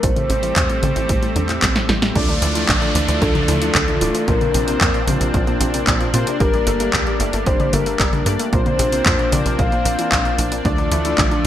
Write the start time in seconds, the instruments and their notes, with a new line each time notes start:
0.03 analog synth bass A1, synth arpeggio sound A2, analog synth pad G3 A3 C4, soft synth lead C5, kick, closed hi-hat
0.16 synth arpeggio sound A2, closed hi-hat, high tom
0.30 analog synth bass A1, synth arpeggio sound C3, closed hi-hat
0.43 synth arpeggio sound E3, closed hi-hat
0.56 analog synth bass E2, synth arpeggio sound A2, kick, clap, closed hi-hat
0.69 synth arpeggio sound A2, closed hi-hat
0.83 analog synth bass A1, synth arpeggio sound C3, closed hi-hat, high tom
0.96 analog synth bass A1, synth arpeggio sound E3, closed hi-hat
1.09 analog synth bass A1, synth arpeggio sound A2, kick, closed hi-hat
1.23 synth arpeggio sound A2, closed hi-hat
1.36 analog synth bass E2, synth arpeggio sound D3, closed hi-hat
1.49 synth arpeggio sound A2, clap, closed hi-hat
1.62 analog synth bass A1, synth arpeggio sound C3, kick, snare, clap, closed hi-hat
1.76 synth arpeggio sound A2, snare, closed hi-hat
1.89 analog synth bass A1, synth arpeggio sound E3, snare, closed hi-hat
2.02 synth arpeggio sound A2, snare, closed hi-hat
2.15 analog synth bass D2, synth arpeggio sound D3, analog synth pad F3 A3 D4, analog polysynth A3 D4 F4 D5, soft synth lead D5, kick, closed hi-hat, downlifter
2.29 synth arpeggio sound D3, closed hi-hat
2.42 analog synth bass D2, synth arpeggio sound E3, closed hi-hat
2.55 synth arpeggio sound E3, analog polysynth A3 D4 F4 D5, closed hi-hat
2.69 analog synth bass A1, synth arpeggio sound D3, kick, clap, closed hi-hat
2.82 synth arpeggio sound D3, closed hi-hat
2.95 analog synth bass D2, synth arpeggio sound E3, closed hi-hat
3.08 analog synth bass D2, synth arpeggio sound E3, closed hi-hat
3.22 analog synth bass D2, synth arpeggio sound D3, soft synth lead A4, kick, closed hi-hat
3.35 synth arpeggio sound D3, closed hi-hat, high tom
3.48 analog synth bass D2, synth arpeggio sound E3, closed hi-hat, high tom
3.62 synth arpeggio sound E3, closed hi-hat
3.75 analog synth bass D2, synth arpeggio sound D3, soft synth lead A4, kick, clap, closed hi-hat
3.88 synth arpeggio sound D3, closed hi-hat, high tom
4.01 analog synth bass D1, synth arpeggio sound E3, analog polysynth A3 D4 F4 D5, closed hi-hat
4.15 synth arpeggio sound E3, closed hi-hat
4.28 analog synth bass A#1, synth arpeggio sound A#2, analog synth pad A#3 C4 D4, analog polysynth A#3 D4 F4 C5, soft synth lead A#4, kick, closed hi-hat
4.41 synth arpeggio sound A#2, closed hi-hat, high tom
4.54 analog synth bass A#1, synth arpeggio sound C3, closed hi-hat
4.68 synth arpeggio sound C3, analog polysynth A#3 D4 F4 C5, closed hi-hat
4.81 analog synth bass F2, synth arpeggio sound A#2, kick, clap, closed hi-hat
4.94 synth arpeggio sound A#2, closed hi-hat
5.07 analog synth bass A#1, synth arpeggio sound C3, closed hi-hat, high tom
5.21 analog synth bass A#1, synth arpeggio sound C3, closed hi-hat
5.34 analog synth bass A#1, synth arpeggio sound A#2, kick, closed hi-hat
5.47 synth arpeggio sound A#2, closed hi-hat
5.61 analog synth bass A#1, synth arpeggio sound C3, closed hi-hat
5.74 synth arpeggio sound C3, closed hi-hat
5.87 analog synth bass A#1, synth arpeggio sound A#2, kick, clap, closed hi-hat
6.01 synth arpeggio sound A#2, closed hi-hat
6.14 analog synth bass A#2, synth arpeggio sound C3, analog polysynth A#3 D4 F4 C5, closed hi-hat
6.27 synth arpeggio sound C3, closed hi-hat
6.40 analog synth bass G1, synth arpeggio sound G3, analog synth pad G3, analog polysynth A#3 D4 G4 D5, soft synth lead A#4, kick, closed hi-hat
6.54 synth arpeggio sound G3, closed hi-hat
6.67 analog synth bass G1, synth arpeggio sound A3, closed hi-hat
6.80 synth arpeggio sound A3, analog polysynth A#3 D4 G4 D5, closed hi-hat
6.93 analog synth bass D2, synth arpeggio sound G3, kick, clap, closed hi-hat
7.07 synth arpeggio sound G3, closed hi-hat
7.20 analog synth bass G1, synth arpeggio sound A3, closed hi-hat
7.33 analog synth bass G1, synth arpeggio sound A3, closed hi-hat
7.46 analog synth bass G1, synth arpeggio sound G3, soft synth lead C5, kick, closed hi-hat
7.60 synth arpeggio sound G3, closed hi-hat, high tom
7.73 analog synth bass G1, synth arpeggio sound A3, soft synth lead A#4, closed hi-hat, high tom
7.86 synth arpeggio sound A3, closed hi-hat
8.00 analog synth bass G1, synth arpeggio sound G3, kick, clap, closed hi-hat
8.13 synth arpeggio sound G3, closed hi-hat, high tom
8.26 analog synth bass G2, synth arpeggio sound A3, analog polysynth A#3 D4 G4 D5, closed hi-hat
8.39 synth arpeggio sound A3, closed hi-hat
8.53 analog synth bass A#1, synth arpeggio sound A#2, analog synth pad A#3 C4 D4, analog polysynth A#3 D4 F4 C5, soft synth lead C5, kick, closed hi-hat
8.66 synth arpeggio sound A#2, closed hi-hat, high tom
8.79 analog synth bass A#1, synth arpeggio sound C3, closed hi-hat
8.92 synth arpeggio sound C3, analog polysynth A#3 D4 F4 C5, closed hi-hat
9.06 analog synth bass F2, synth arpeggio sound A#2, kick, clap, closed hi-hat
9.19 synth arpeggio sound A#2, closed hi-hat
9.32 analog synth bass A#1, synth arpeggio sound C3, soft synth lead D5, closed hi-hat, high tom
9.45 analog synth bass A#1, synth arpeggio sound C3, closed hi-hat
9.59 analog synth bass A#1, synth arpeggio sound A#2, soft synth lead F5, kick, closed hi-hat
9.72 synth arpeggio sound A#2, closed hi-hat
9.85 analog synth bass A#1, synth arpeggio sound A#3, closed hi-hat
9.99 synth arpeggio sound E3, closed hi-hat
10.12 analog synth bass A#1, synth arpeggio sound A#3, kick, clap, closed hi-hat
10.25 synth arpeggio sound A#2, closed hi-hat
10.38 analog synth bass A#1, synth arpeggio sound A2, closed hi-hat
10.52 synth arpeggio sound A#2, closed hi-hat
10.65 analog synth bass D2, synth arpeggio sound D3, analog synth pad F3 A3, analog polysynth A3 D4 F4 D5, soft synth lead D5, kick, closed hi-hat
10.78 synth arpeggio sound D3, closed hi-hat
10.91 analog synth bass D2, synth arpeggio sound E3, closed hi-hat
11.05 synth arpeggio sound E3, analog polysynth A3 D4 F4 D5, closed hi-hat
11.18 analog synth bass A1, synth arpeggio sound D3, kick, clap, closed hi-hat
11.31 synth arpeggio sound D3, closed hi-hat